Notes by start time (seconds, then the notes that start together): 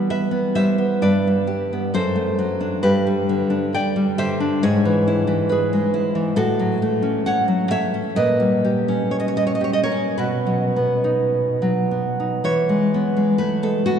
Already playing: E3 G3 B3
0.10 B4 E5
0.31 B3
0.55 G3 C5 E5
0.78 B3
1.02 G2 B4 D5
1.27 G3
1.47 G4
1.73 B3
1.94 F#2 A4 C5
2.16 A3
2.39 F#3
2.60 D4
2.83 G2 G4 B4
3.07 G3
3.29 D3
3.50 D4
3.74 D5 G5
3.96 G3
4.18 D3 C5 E5
4.40 D4
4.63 G#2 G#4 C#5
4.85 E3
5.08 E4
5.27 E3
5.49 G#4 B4
5.73 G#3
5.94 E4
6.15 E3
6.36 A2 F#4 A4
6.59 F#3
6.82 A3
7.03 C#4
7.26 C#5 F#5
7.48 F#3
7.71 A3 C#5 E5
7.94 C#4
8.16 A#2 B4 D#5
8.40 G3
8.64 G4
8.88 C#4
9.11 C#5
9.20 D#5
9.28 C#5
9.36 G3 D#5
9.47 C#5
9.55 D#5
9.61 G4 C#5
9.73 D#5
9.83 A#4 C#5
9.92 C#4
10.18 B2 F#4 B4
10.46 F#3
10.76 B3
11.04 D#4
11.62 F#3
11.91 B3
12.20 D#4
12.44 E3 C#5
12.69 G#3
12.94 B3
13.17 G#3
13.38 A3 B4
13.63 G#3 A4
13.86 B3 F#4